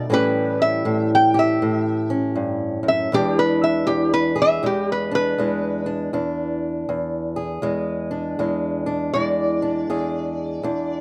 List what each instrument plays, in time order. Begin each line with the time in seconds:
Already playing: resonator guitar played with a steel bar D5
0.10 steel-string acoustic guitar A2 E3 G3 C#4 G4, resonator guitar played with a steel bar B4
0.62 resonator guitar played with a steel bar E5
0.85 steel-string acoustic guitar A2
1.15 resonator guitar played with a steel bar G5
1.34 steel-string acoustic guitar G4
1.39 resonator guitar played with a steel bar E5
1.62 steel-string acoustic guitar A2
2.10 steel-string acoustic guitar C#4
2.35 steel-string acoustic guitar G2
2.83 steel-string acoustic guitar F#2
2.88 resonator guitar played with a steel bar E5
3.12 steel-string acoustic guitar E2 E3 G#3 D4, resonator guitar played with a steel bar G4
3.39 resonator guitar played with a steel bar B4
3.64 resonator guitar played with a steel bar E5
3.87 steel-string acoustic guitar E2, resonator guitar played with a steel bar G4
4.14 resonator guitar played with a steel bar B4
4.36 steel-string acoustic guitar G#4
4.42 resonator guitar played with a steel bar E5
4.63 steel-string acoustic guitar E2 G#3, resonator guitar played with a steel bar G4
4.92 resonator guitar played with a steel bar B4
5.11 steel-string acoustic guitar D4, resonator guitar played with a steel bar B4
5.38 steel-string acoustic guitar E2 G#3
5.86 steel-string acoustic guitar D4
6.13 steel-string acoustic guitar E2 D4
6.89 steel-string acoustic guitar E2
7.36 steel-string acoustic guitar G#4
7.62 steel-string acoustic guitar E2 G#3
8.11 steel-string acoustic guitar D4
8.39 steel-string acoustic guitar E2 G#3
8.86 steel-string acoustic guitar D4
9.13 steel-string acoustic guitar E2 G#3, resonator guitar played with a steel bar D5
9.62 steel-string acoustic guitar D4
9.90 steel-string acoustic guitar E2 G#4
10.63 steel-string acoustic guitar E2 D4